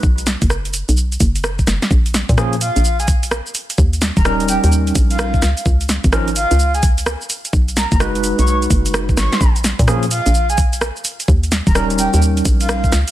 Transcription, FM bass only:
X:1
M:4/4
L:1/16
Q:"Swing 16ths" 1/4=128
K:Ebmix
V:1 name="FM bass" clef=bass
=B,,,3 ^F,,,4 B,,,3 F,,,4 F,,, z | B,,,3 B,,4 B,,,6 z3 | E,,3 E,,,4 E,,3 B,,,4 D,, z | D,,3 A,,,4 D,,6 z3 |
=B,,,3 ^F,,,4 B,,,3 F,,,4 ^G,,, z | B,,,3 B,,4 B,,,6 z3 | E,,3 E,,,4 E,,3 B,,,4 D,, z |]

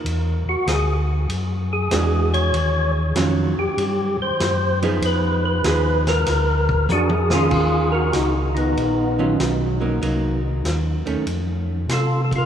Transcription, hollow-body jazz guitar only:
X:1
M:4/4
L:1/8
Q:"Swing" 1/4=96
K:Ebm
V:1 name="Hollow-body jazz guitar"
z6 [=E,^G,=D^F]2 | z2 [E,G,DF] z4 [F,CEA]- | [F,CEA]2 [F,CEA] z4 [E,DF]- | [E,DF]2 z3 [E,G,DF]2 [G,B,E] |
[G,B,E] z2 [E,=A,D] z4 |]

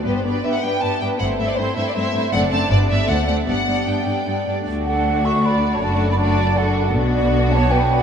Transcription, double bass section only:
X:1
M:3/4
L:1/8
Q:1/4=158
K:G
V:1 name="Double bass section" clef=bass
G,,, z4 z | G,,, z4 z | F,,, z G,,, z D,, z | G,,, z4 z |
[K:D] D,,6 | F,,,6 | B,,,6 |]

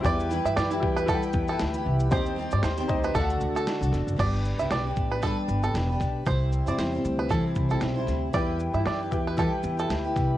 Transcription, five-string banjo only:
X:1
M:4/4
L:1/16
Q:"Swing 16ths" 1/4=116
K:G
V:1 name="Five-string banjo"
d2 z e d z2 B A z2 A z4 | c2 z d c z2 B A z2 A z4 | d2 z e d z2 B A z2 A z4 | c2 z d c z2 B A z2 A z4 |
d2 z e d z2 B A z2 A z4 |]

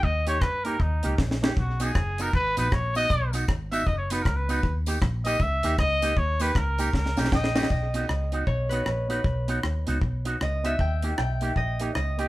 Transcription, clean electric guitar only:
X:1
M:4/4
L:1/8
Q:"Swing" 1/4=156
K:B
V:1 name="Clean electric guitar"
z [A,D=G] z [A,DG] z [A,DG] z [A,DG] | z [B,DF] z [B,DF] z [B,DF] z [B,DF] | z [B,DF] z [B,DF] z [B,DF] z [B,DF] | z [A,D=G] z [A,DG] z [A,DG] z [A,DG] |
z [A,D=G] z [A,DG] z [A,DG] z [A,DG] | z [B,DF] z [B,DF] z [B,DF] z [B,DF] | z [B,DF] z [B,DF] z [B,DF] z [B,DF] | z [A,D=G] z [A,DG] z [A,DG] z [A,DG] |]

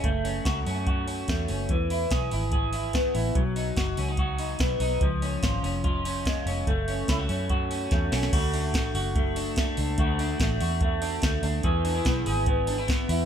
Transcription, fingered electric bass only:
X:1
M:4/4
L:1/8
Q:1/4=145
K:F#dor
V:1 name="Fingered electric bass" clef=bass
F,,,2 C,, F,,3 E,, F,,, | E,,2 B,,, G,,,4 A,,, | B,,,2 F,,, C,,3 B,,, B,,, | C,,2 G,,, ^E,,,4 E,,, |
F,,,2 C,, F,,3 E,, B,,, | [K:Dlyd] D,,2 A,,, F,,,4 C,, | D,,2 A,,, E,,3 D,, D,, | E,,2 B,,, G,,,4 E,, |]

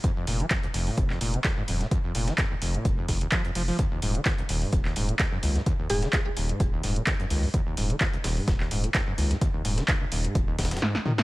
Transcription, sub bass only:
X:1
M:4/4
L:1/8
Q:"Swing 16ths" 1/4=128
K:Ebdor
V:1 name="Sub bass" clef=bass
z F,,, z F,,, F,,, F,,, z E,,, | z F,,, z F,,, F,,, F,,, z F,,, | z E,,, z E,,, E,,, E,,, z D,, | z E,,, z E,,, E,,, E,,, z D,, |
z E,,, z E,,, E,,, E,,, z D,, | z E,,, z E,,, E,,, E,,, z2 |]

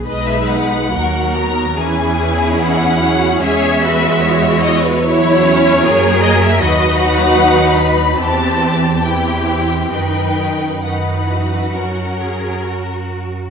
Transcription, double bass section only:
X:1
M:4/4
L:1/16
Q:1/4=72
K:B
V:1 name="Double bass section" clef=bass
B,,,4 D,,4 E,,8 | E,,12 F,,4 | D,,8 E,,8 | F,,8 F,,6- F,, z |]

